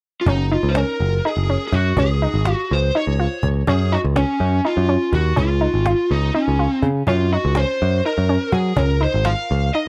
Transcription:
0.21 lead electric guitar F4
0.26 picked electric bass F#1, synth arpeggio sound C#4, lead electric guitar D#4, cajon bass
0.51 synth arpeggio sound D#4, lead electric guitar F4
0.63 picked electric bass C#2
0.69 lead electric guitar C5
0.75 synth arpeggio sound C#4, lead electric guitar A#4, cajon slap
1.00 picked electric bass F#1
1.24 synth arpeggio sound D#4, lead electric guitar G#4, cajon slap
1.37 picked electric bass F#1
1.50 synth arpeggio sound C#4
1.68 lead electric guitar G#4
1.72 picked electric bass F#2, lead electric guitar F#4, cajon bass
1.97 picked electric bass C#2, synth arpeggio sound C#4, lead electric guitar G#4, cajon bass
2.22 synth arpeggio sound D#4
2.34 picked electric bass G#1
2.45 synth arpeggio sound F4, cajon slap
2.54 lead electric guitar F#4
2.70 picked electric bass C#2, lead electric guitar C5, cajon slap
2.94 synth arpeggio sound D#4, lead electric guitar C#5, cajon slap
3.07 picked electric bass C#2
3.20 synth arpeggio sound F4
3.43 picked electric bass C#2, cajon bass
3.67 picked electric bass F#2, synth arpeggio sound C#4, lead electric guitar G#4, cajon bass
3.92 synth arpeggio sound D#4, lead electric guitar F#4
4.04 picked electric bass C#2
4.16 synth arpeggio sound C#4, lead electric guitar C#4, cajon slap
4.40 picked electric bass F#2
4.65 synth arpeggio sound D#4, lead electric guitar F4
4.77 picked electric bass F#2
4.89 synth arpeggio sound C#4
5.12 picked electric bass D#2, lead electric guitar F#4, cajon bass
5.36 picked electric bass C#2, synth arpeggio sound C#4, lead electric guitar F4, cajon bass
5.61 synth arpeggio sound D#4, cajon slap
5.74 picked electric bass G#1
5.86 synth arpeggio sound F4, cajon slap
6.11 picked electric bass C#2, lead electric guitar D#4
6.35 lead electric guitar C#4, synth arpeggio sound D#4
6.48 picked electric bass C#2
6.59 synth arpeggio sound F4
6.73 lead electric guitar C4
6.82 picked electric bass C#3, cajon bass
7.07 picked electric bass F#2, synth arpeggio sound C#4, lead electric guitar F4, cajon bass
7.33 synth arpeggio sound D#4, lead electric guitar F#4
7.45 picked electric bass C#2
7.55 synth arpeggio sound C#4, lead electric guitar C5, cajon slap
7.80 picked electric bass F#2, cajon slap
8.06 synth arpeggio sound D#4, lead electric guitar A#4
8.18 picked electric bass F#2
8.29 synth arpeggio sound C#4
8.52 picked electric bass F#3, lead electric guitar G#4, cajon bass, cajon slap
8.76 picked electric bass C#2, synth arpeggio sound C#4, lead electric guitar A#4, cajon bass
9.01 synth arpeggio sound D#4, lead electric guitar C5
9.14 picked electric bass G#1
9.25 synth arpeggio sound F4, lead electric guitar F5, cajon slap
9.51 picked electric bass C#2
9.74 synth arpeggio sound D#4, lead electric guitar D#5

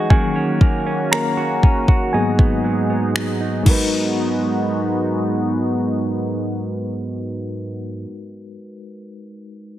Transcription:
Already playing: clean electric guitar G#3 D#4 F#4, fm electric piano D#4 F#4 G#4 D#5 F#5 G#5
0.10 clean electric guitar D#3 F#4, analog synth pad D#3 A#3 C#4 F#4, fm electric piano F#3 A#3 C#4 G#4 G#5, kick
0.36 clean electric guitar C#4
0.61 clean electric guitar A#3, kick
0.86 clean electric guitar C#4
1.12 clean electric guitar A#3, fm electric piano A#4 A#5, finger snap
1.37 clean electric guitar F#4
1.63 clean electric guitar C#4, kick
1.88 clean electric guitar F#4, kick
2.13 clean electric guitar G#2 D#4, fm electric piano F#3 A#3 B3 G#4 G#5, analog synth pad G#3 D#4 G#4
2.39 clean electric guitar B3, kick
2.64 clean electric guitar F#3
2.90 clean electric guitar B3
3.15 clean electric guitar F#3, finger snap
3.41 clean electric guitar D#4
3.63 clean electric guitar G#2 F#3, fm electric piano G#3 D#4, analog synth pad G#3 B3 D#4 F#4, kick, crash
3.67 clean electric guitar B3, fm electric piano F#4 A#4 B4
3.73 clean electric guitar D#4

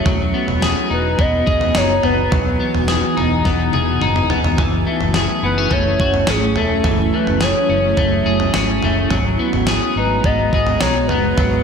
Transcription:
Already playing: clean electric guitar A3 C#4 G#4, ambient pad F#4
0.06 fingered electric bass E1, ambient pad E3 B3 D#4 G#5, clean electric guitar F#3, kick, floor tom
0.34 clean electric guitar B3
0.48 fingered electric bass E1, floor tom
0.62 clean electric guitar G#4, snare
0.90 fingered electric bass E1, clean electric guitar D#4, soft synth lead B4
1.19 fingered electric bass E1, clean electric guitar B3, soft synth lead D#5, kick, floor tom
1.47 fingered electric bass E1, clean electric guitar G#4, soft synth lead D#5, kick
1.61 floor tom
1.75 fingered electric bass F#1, clean electric guitar D#4, soft synth lead C#5, snare
2.03 fingered electric bass F#1, clean electric guitar B3, soft synth lead B4, floor tom
2.31 fingered electric bass E1, clean electric guitar F#3, kick, floor tom
2.60 clean electric guitar B3
2.75 fingered electric bass E1, floor tom
2.88 clean electric guitar G#4, snare
3.17 fingered electric bass E1, clean electric guitar D#4, floor tom
3.45 fingered electric bass E1, clean electric guitar B3, kick, snare
3.73 fingered electric bass E1, clean electric guitar G#4, high tom
4.02 fingered electric bass F#1, clean electric guitar D#4, mid tom
4.16 mid tom
4.30 fingered electric bass E1, clean electric guitar B3, floor tom
4.44 floor tom
4.58 fingered electric bass F#1, clean electric guitar E3, ambient pad F#3 A3 C#4 E4, kick, floor tom
4.87 clean electric guitar A3
5.00 fingered electric bass F#1, floor tom
5.14 clean electric guitar G#4, snare
5.43 fingered electric bass F#1, clean electric guitar B3, soft synth lead B4
5.58 clean electric guitar C#4
5.71 fingered electric bass F#1, clean electric guitar A3, soft synth lead C#5, kick, floor tom
6.00 fingered electric bass F#1, clean electric guitar F#4, kick
6.14 floor tom
6.27 fingered electric bass G#1, clean electric guitar C#4, soft synth lead G#4, snare
6.56 fingered electric bass E1, clean electric guitar A3, soft synth lead A4, floor tom
6.84 fingered electric bass F#1, clean electric guitar E3, kick, floor tom
7.14 clean electric guitar A3, soft synth lead B4
7.27 fingered electric bass F#1, floor tom
7.41 clean electric guitar G#4, soft synth lead C#5, snare
7.69 fingered electric bass F#1, clean electric guitar C#4
7.97 fingered electric bass F#1, clean electric guitar A3, kick, floor tom
8.26 fingered electric bass F#1, clean electric guitar G#4
8.40 floor tom
8.54 fingered electric bass G#1, clean electric guitar C#4, snare
8.83 fingered electric bass F#1, clean electric guitar A3, floor tom
9.10 fingered electric bass G#1, clean electric guitar F#3, ambient pad G#3 B3 F#4, kick, floor tom
9.39 clean electric guitar B3
9.53 fingered electric bass G#1, floor tom
9.67 clean electric guitar G#4, snare
9.96 fingered electric bass G#1, clean electric guitar D#4, soft synth lead B4
10.24 fingered electric bass G#1, clean electric guitar B3, soft synth lead D#5, kick, floor tom
10.52 fingered electric bass G#1, clean electric guitar G#4, soft synth lead D#5, kick
10.67 floor tom
10.80 fingered electric bass B1, clean electric guitar D#4, soft synth lead C#5, snare
11.08 fingered electric bass F#1, clean electric guitar B3, soft synth lead B4, floor tom
11.38 fingered electric bass G#1, clean electric guitar F#3, kick, floor tom

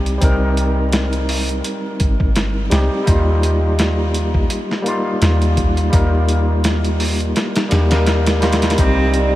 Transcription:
Already playing: 808-style bass C2, tine electric piano G3 C4 D#4 G4
0.06 closed hi-hat
0.18 808-style bass C2, tine electric piano G3 C4 D#4, kick, closed hi-hat
0.24 tine electric piano A#4
0.57 closed hi-hat
0.93 snare, closed hi-hat
1.13 closed hi-hat
1.29 open hi-hat
1.49 closed hi-hat
1.64 closed hi-hat
2.00 808-style bass G1, kick, closed hi-hat
2.20 808-style bass G1, kick
2.36 snare, closed hi-hat
2.70 808-style bass C2, tine electric piano G3 C4 D#4 G4, snare, closed hi-hat
3.04 808-style bass D#2, tine electric piano G3 A#3 D#4, kick, closed hi-hat
3.09 tine electric piano F4
3.43 closed hi-hat
3.79 snare, closed hi-hat
4.14 closed hi-hat
4.34 kick
4.50 closed hi-hat
4.71 snare
4.82 tine electric piano G3 A#3 D#4, closed hi-hat
4.88 tine electric piano F4
5.22 808-style bass D#2, snare, closed hi-hat
5.42 closed hi-hat
5.57 kick, closed hi-hat
5.77 closed hi-hat
5.90 808-style bass D#2, tine electric piano G3 A#3 D#4, kick, closed hi-hat
5.96 tine electric piano A#4
6.29 closed hi-hat
6.64 snare, closed hi-hat
6.84 closed hi-hat
7.00 open hi-hat
7.20 closed hi-hat
7.36 snare, closed hi-hat
7.56 snare, closed hi-hat
7.69 808-style bass D#2, tine electric piano G3 A#3 D#4 G4, snare, closed hi-hat
7.89 tine electric piano G3 A#3 D#4 A#4, snare, closed hi-hat
8.07 snare, closed hi-hat
8.27 snare, closed hi-hat
8.41 tine electric piano G3 A#3 D#4 F4, snare, closed hi-hat
8.52 snare, closed hi-hat
8.62 snare, closed hi-hat
8.70 snare, closed hi-hat
8.75 808-style bass C2, tine electric piano G3 C4, analog synth pad D5, kick, closed hi-hat
8.79 cello C4, tine electric piano D#4 G4
9.14 closed hi-hat

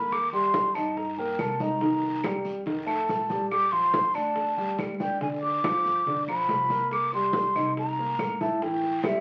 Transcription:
Already playing: upright bass D#2, grand piano A#3 A#4, flute B5
0.11 flute D6, high bongo, high conga, long guiro, claves
0.32 grand piano G3 G4, flute C6, high conga
0.54 high bongo, high conga, short guiro
0.75 upright bass G2, grand piano D#4 D#5, flute A5, high conga, short guiro, claves
0.97 flute A#5, high bongo, high conga, long guiro
1.18 grand piano A#3 A#4, flute G5, high conga
1.39 upright bass C2, flute A5, high bongo, low bongo, high conga, short guiro, claves
1.60 grand piano D#4 D#5, flute A#5, high conga, short guiro
1.81 grand piano D#3 D#4, high bongo, high conga, long guiro
2.03 high bongo, high conga
2.23 grand piano G3 G4, high bongo, high conga, short guiro, claves
2.45 upright bass F2, high bongo, high conga, short guiro
2.66 grand piano D#3 D#4, high bongo, high conga, long guiro
2.86 grand piano A3 A4, flute A5, high bongo, high conga, claves
3.08 upright bass A#1, high bongo, low bongo, high conga, short guiro
3.29 grand piano G3 G4, high conga, short guiro
3.50 flute D6, high bongo, high conga, long guiro, claves
3.72 grand piano F3 F4, flute C6, high conga
3.94 high bongo, high conga, short guiro
4.15 upright bass D2, grand piano D4 D5, flute A5, high conga, short guiro, claves
4.36 high bongo, high conga, long guiro
4.57 grand piano G3 G4, high conga
4.78 upright bass D2, high bongo, low bongo, high conga, short guiro, claves
5.00 grand piano D4 D5, flute G5, high conga, short guiro
5.21 grand piano D3 D4, flute G#5, high bongo, high conga, long guiro
5.43 flute D6, high bongo, high conga
5.64 grand piano F3 F4, high bongo, high conga, short guiro, claves
5.85 upright bass G1, high bongo, high conga, short guiro
6.06 grand piano D3 D4, high bongo, high conga, long guiro
6.27 upright bass B1, grand piano F3 F4, flute B5, high bongo, high conga, claves
6.49 upright bass C2, high bongo, low bongo, high conga, short guiro
6.70 grand piano A#3 A#4, high conga, short guiro
6.91 flute D6, high bongo, high conga, long guiro, claves
7.13 grand piano G3 G4, flute C6, high conga
7.33 high bongo, high conga, short guiro
7.55 upright bass C2, grand piano D#4 D#5, high conga, short guiro, claves
7.77 flute A#5, high bongo, high conga, long guiro
7.98 grand piano A#3 A#4, high conga
8.19 upright bass A1, high bongo, low bongo, high conga, short guiro, claves
8.41 grand piano E4 E5, flute A5, high conga, short guiro
8.62 grand piano E3 E4, flute G5, high bongo, high conga, long guiro
8.83 high bongo, high conga
9.04 grand piano G3 G4, flute E5, high bongo, high conga, short guiro, claves

